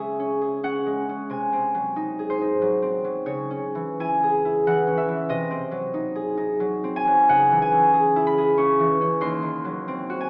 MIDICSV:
0, 0, Header, 1, 2, 480
1, 0, Start_track
1, 0, Key_signature, 4, "minor"
1, 0, Tempo, 657895
1, 954, Time_signature, 3, 2, 24, 8
1, 2379, Tempo, 728155
1, 2859, Tempo, 663717
1, 3339, Tempo, 645161
1, 4299, Tempo, 674157
1, 5259, Tempo, 647249
1, 7488, End_track
2, 0, Start_track
2, 0, Title_t, "Harp"
2, 0, Program_c, 0, 46
2, 0, Note_on_c, 0, 49, 40
2, 0, Note_on_c, 0, 56, 30
2, 0, Note_on_c, 0, 61, 32
2, 0, Note_on_c, 0, 68, 41
2, 0, Note_on_c, 0, 73, 54
2, 0, Note_on_c, 0, 76, 56
2, 133, Note_off_c, 0, 61, 0
2, 142, Note_on_c, 0, 61, 38
2, 294, Note_off_c, 0, 68, 0
2, 302, Note_on_c, 0, 68, 38
2, 456, Note_off_c, 0, 61, 0
2, 463, Note_on_c, 0, 61, 39
2, 466, Note_on_c, 0, 78, 65
2, 620, Note_off_c, 0, 56, 0
2, 629, Note_on_c, 0, 56, 37
2, 787, Note_off_c, 0, 61, 0
2, 796, Note_on_c, 0, 61, 38
2, 946, Note_on_c, 0, 48, 38
2, 954, Note_on_c, 0, 80, 55
2, 970, Note_off_c, 0, 76, 0
2, 972, Note_off_c, 0, 49, 0
2, 973, Note_off_c, 0, 73, 0
2, 974, Note_off_c, 0, 61, 0
2, 1114, Note_on_c, 0, 60, 34
2, 1274, Note_on_c, 0, 54, 36
2, 1287, Note_off_c, 0, 78, 0
2, 1431, Note_on_c, 0, 63, 44
2, 1589, Note_off_c, 0, 68, 0
2, 1598, Note_on_c, 0, 68, 39
2, 1676, Note_on_c, 0, 72, 56
2, 1753, Note_off_c, 0, 63, 0
2, 1762, Note_on_c, 0, 63, 40
2, 1900, Note_off_c, 0, 54, 0
2, 1909, Note_on_c, 0, 54, 44
2, 2051, Note_off_c, 0, 60, 0
2, 2059, Note_on_c, 0, 60, 41
2, 2212, Note_off_c, 0, 54, 0
2, 2221, Note_on_c, 0, 54, 39
2, 2377, Note_on_c, 0, 49, 40
2, 2378, Note_on_c, 0, 73, 56
2, 2395, Note_off_c, 0, 48, 0
2, 2396, Note_off_c, 0, 60, 0
2, 2399, Note_off_c, 0, 54, 0
2, 2400, Note_off_c, 0, 72, 0
2, 2403, Note_off_c, 0, 63, 0
2, 2540, Note_on_c, 0, 61, 42
2, 2702, Note_on_c, 0, 52, 41
2, 2859, Note_off_c, 0, 80, 0
2, 2866, Note_on_c, 0, 64, 41
2, 2869, Note_on_c, 0, 80, 72
2, 3028, Note_off_c, 0, 68, 0
2, 3036, Note_on_c, 0, 68, 47
2, 3184, Note_off_c, 0, 64, 0
2, 3193, Note_on_c, 0, 64, 43
2, 3343, Note_off_c, 0, 52, 0
2, 3350, Note_on_c, 0, 52, 47
2, 3352, Note_on_c, 0, 78, 75
2, 3421, Note_off_c, 0, 56, 0
2, 3491, Note_off_c, 0, 61, 0
2, 3500, Note_on_c, 0, 61, 42
2, 3579, Note_on_c, 0, 76, 72
2, 3653, Note_off_c, 0, 52, 0
2, 3662, Note_on_c, 0, 52, 44
2, 3751, Note_off_c, 0, 78, 0
2, 3813, Note_on_c, 0, 48, 50
2, 3818, Note_on_c, 0, 75, 65
2, 3836, Note_off_c, 0, 73, 0
2, 3837, Note_off_c, 0, 49, 0
2, 3838, Note_off_c, 0, 61, 0
2, 3838, Note_off_c, 0, 76, 0
2, 3840, Note_off_c, 0, 52, 0
2, 3842, Note_off_c, 0, 64, 0
2, 3974, Note_on_c, 0, 60, 45
2, 4128, Note_on_c, 0, 54, 44
2, 4295, Note_on_c, 0, 63, 48
2, 4441, Note_off_c, 0, 68, 0
2, 4449, Note_on_c, 0, 68, 50
2, 4598, Note_off_c, 0, 63, 0
2, 4606, Note_on_c, 0, 63, 42
2, 4758, Note_off_c, 0, 54, 0
2, 4767, Note_on_c, 0, 54, 50
2, 4928, Note_off_c, 0, 60, 0
2, 4937, Note_on_c, 0, 60, 45
2, 5016, Note_off_c, 0, 80, 0
2, 5024, Note_on_c, 0, 80, 89
2, 5093, Note_off_c, 0, 54, 0
2, 5102, Note_on_c, 0, 54, 49
2, 5257, Note_on_c, 0, 49, 51
2, 5260, Note_on_c, 0, 78, 77
2, 5277, Note_off_c, 0, 48, 0
2, 5277, Note_off_c, 0, 60, 0
2, 5278, Note_off_c, 0, 63, 0
2, 5278, Note_off_c, 0, 75, 0
2, 5279, Note_off_c, 0, 54, 0
2, 5424, Note_on_c, 0, 52, 48
2, 5494, Note_off_c, 0, 80, 0
2, 5503, Note_on_c, 0, 80, 75
2, 5577, Note_on_c, 0, 61, 42
2, 5667, Note_off_c, 0, 78, 0
2, 5728, Note_off_c, 0, 68, 0
2, 5737, Note_on_c, 0, 68, 51
2, 5904, Note_on_c, 0, 64, 50
2, 5983, Note_on_c, 0, 83, 77
2, 6057, Note_off_c, 0, 68, 0
2, 6066, Note_on_c, 0, 68, 47
2, 6206, Note_off_c, 0, 61, 0
2, 6212, Note_on_c, 0, 85, 76
2, 6215, Note_on_c, 0, 61, 50
2, 6366, Note_off_c, 0, 52, 0
2, 6375, Note_on_c, 0, 52, 46
2, 6386, Note_off_c, 0, 83, 0
2, 6523, Note_off_c, 0, 61, 0
2, 6532, Note_on_c, 0, 61, 45
2, 6679, Note_on_c, 0, 39, 54
2, 6685, Note_on_c, 0, 84, 72
2, 6704, Note_off_c, 0, 85, 0
2, 6707, Note_off_c, 0, 49, 0
2, 6707, Note_off_c, 0, 52, 0
2, 6707, Note_off_c, 0, 61, 0
2, 6709, Note_off_c, 0, 64, 0
2, 6709, Note_off_c, 0, 80, 0
2, 6710, Note_off_c, 0, 68, 0
2, 6843, Note_on_c, 0, 51, 44
2, 7005, Note_on_c, 0, 54, 44
2, 7177, Note_on_c, 0, 60, 54
2, 7340, Note_on_c, 0, 66, 50
2, 7420, Note_on_c, 0, 80, 75
2, 7488, Note_off_c, 0, 39, 0
2, 7488, Note_off_c, 0, 51, 0
2, 7488, Note_off_c, 0, 54, 0
2, 7488, Note_off_c, 0, 60, 0
2, 7488, Note_off_c, 0, 66, 0
2, 7488, Note_off_c, 0, 80, 0
2, 7488, Note_off_c, 0, 84, 0
2, 7488, End_track
0, 0, End_of_file